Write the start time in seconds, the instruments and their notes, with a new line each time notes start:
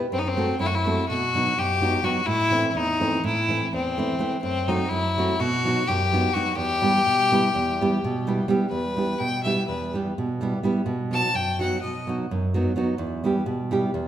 0.12 nylon-string guitar F#2, violin C4
0.19 violin D#4
0.28 violin C4
0.37 nylon-string guitar A3 C4 F#4 A4
0.59 nylon-string guitar F#2, violin E4
0.66 violin F#4
0.75 violin E4
0.85 nylon-string guitar A3 C4 F#4 A4
1.09 nylon-string guitar B2, violin F#4
1.35 nylon-string guitar F#3 B3 D#4 F#4
1.58 nylon-string guitar F#2, violin G4
1.81 nylon-string guitar F#3 B3 D#4 F#4
2.03 nylon-string guitar F#3 B3 D#4 F#4, violin F#4
2.26 nylon-string guitar A2, violin E4
2.51 nylon-string guitar E3 A3 C4 E4
2.70 violin E4
2.75 nylon-string guitar E2, violin D#4
3.00 nylon-string guitar E3 A3 C4 E4
3.24 nylon-string guitar A2, violin E4
3.48 nylon-string guitar E3 A3 C4 E4
3.73 nylon-string guitar E2, violin C4
3.98 nylon-string guitar E3 A3 C4 E4
4.19 nylon-string guitar E3 A3 C4 E4
4.43 nylon-string guitar F#2, violin C4
4.68 nylon-string guitar F#3 A3 C4 F#4, violin D#4
4.89 nylon-string guitar F#2, violin E4
5.18 nylon-string guitar F#3 A3 C4 F#4
5.40 nylon-string guitar B2, violin F#4
5.65 nylon-string guitar F#3 B3 D#4 F#4
5.87 nylon-string guitar F#2, violin G4
6.12 nylon-string guitar F#3 B3 D#4 F#4
6.33 nylon-string guitar F#3 B3 D#4 F#4, violin F#4
6.55 nylon-string guitar E2, violin G4
6.82 nylon-string guitar G3 B3 E4 G4
7.06 nylon-string guitar B2
7.32 nylon-string guitar G3 B3 E4 G4
7.55 nylon-string guitar E2
7.81 nylon-string guitar G3 B3 E4 G4
8.04 nylon-string guitar B2
8.27 nylon-string guitar G3 B3 E4 G4
8.48 nylon-string guitar G3 B3 E4 G4
8.70 nylon-string guitar E2, violin B4
8.96 nylon-string guitar G3 B3 E4 G4
9.18 nylon-string guitar B2, violin G5
9.44 nylon-string guitar G3 B3 E4 G4, violin E5
9.68 nylon-string guitar E2, violin B4
9.93 nylon-string guitar G3 B3 E4 G4
10.18 nylon-string guitar B2
10.41 nylon-string guitar G3 B3 E4 G4
10.63 nylon-string guitar G3 B3 E4 G4
10.86 nylon-string guitar B2
11.11 nylon-string guitar F#3 B3 D#4 F#4, violin A5
11.34 nylon-string guitar F#2, violin G5
11.59 nylon-string guitar F#3 B3 D#4 F#4, violin F#5
11.82 nylon-string guitar B2, violin D#5
12.07 nylon-string guitar F#3 B3 D#4 F#4
12.31 nylon-string guitar F#2
12.54 nylon-string guitar F#3 B3 D#4 F#4
12.76 nylon-string guitar F#3 B3 D#4 F#4
12.98 nylon-string guitar E2
13.24 nylon-string guitar G3 B3 E4 G4
13.46 nylon-string guitar B2
13.71 nylon-string guitar G3 B3 E4 G4
13.94 nylon-string guitar E2